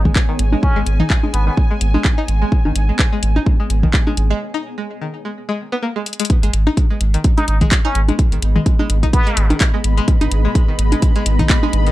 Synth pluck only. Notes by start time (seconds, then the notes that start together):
0.05 G#3
0.29 D#3
0.53 G#3
0.76 G#3
1.00 D#4
1.23 G#3
1.47 D#3
1.71 G#3
1.94 G#3
2.18 D#4
2.42 G#3
2.65 D#3
2.89 G#3
3.13 G#3
3.36 D#4
3.60 G#3
3.83 D#3
4.07 G#3
4.30 G#3
4.54 D#4
4.78 G#3
5.01 D#3
5.25 G#3
5.49 G#3
5.72 B3
5.83 A#3
5.96 G#3
6.20 G#3
6.43 G#3
6.67 D#4
6.90 G#3
7.14 D#3
7.38 G#3
7.61 G#3
7.85 D#4
8.08 G#3
8.32 D#3
8.56 G#3
8.79 G#3
9.03 D#4
9.27 G#3
9.50 D#3
9.74 G#3
9.97 G#3
10.21 D#4
10.45 G#3
10.68 D#3
10.92 G#3
11.16 G#3
11.39 D#4
11.63 G#3
11.87 D#3